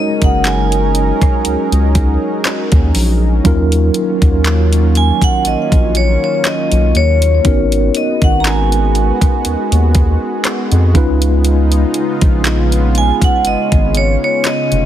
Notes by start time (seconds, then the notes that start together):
Already playing: F#3 G#3 C#4 D#4 F#4 G#4 A#4 D#5
0.22 F#1 F#5, kick, closed hi-hat
0.45 G#5, clap, closed hi-hat
0.72 closed hi-hat
0.95 closed hi-hat
1.22 kick, cross-stick, closed hi-hat
1.45 C#2, closed hi-hat
1.72 C#2, closed hi-hat
1.95 kick, closed hi-hat
2.45 cross-stick, clap, closed hi-hat
2.72 D#2, kick, closed hi-hat
2.95 A#1, open hi-hat
3.44 D#2 D#3 F#3 A#3 C#4 D#4 F4 A#4, kick, closed hi-hat
3.72 closed hi-hat
3.94 closed hi-hat
4.22 D#2, kick, closed hi-hat
4.45 clap, closed hi-hat
4.73 closed hi-hat
4.95 G#5, closed hi-hat
5.22 F#5, kick, closed hi-hat
5.45 A#1 D#5, closed hi-hat
5.72 A#1, kick, closed hi-hat
5.95 C#5, closed hi-hat
6.24 C#5
6.45 D#5, cross-stick, clap, closed hi-hat
6.72 B1, closed hi-hat
6.95 D#2 C#5, closed hi-hat
7.22 closed hi-hat
7.44 G#1 G#3 B3 C#4 D#4 F#4 A#4, kick, closed hi-hat
7.72 closed hi-hat
7.95 D#5, closed hi-hat
8.22 G#1 F#5, kick, closed hi-hat
8.40 A#5
8.45 G#5, clap, closed hi-hat
8.72 closed hi-hat
8.95 closed hi-hat
9.21 kick, closed hi-hat
9.45 D#2, closed hi-hat
9.72 D#2, closed hi-hat
9.95 kick, closed hi-hat
10.45 cross-stick, clap, closed hi-hat
10.72 F2, closed hi-hat
10.94 C#2 C#3 G#3 B3 C#4 D#4 F4 B4, kick, closed hi-hat
11.22 closed hi-hat
11.45 closed hi-hat
11.72 closed hi-hat
11.94 closed hi-hat
12.21 A#1, kick, closed hi-hat
12.45 clap, closed hi-hat
12.72 closed hi-hat
12.95 C#4 G#5, closed hi-hat
13.22 F#5, kick, closed hi-hat
13.45 G#1 D#5, closed hi-hat
13.72 G#1, kick, closed hi-hat
13.95 C#5, closed hi-hat
14.24 C#5
14.45 D#5, cross-stick, clap, closed hi-hat
14.72 F1, closed hi-hat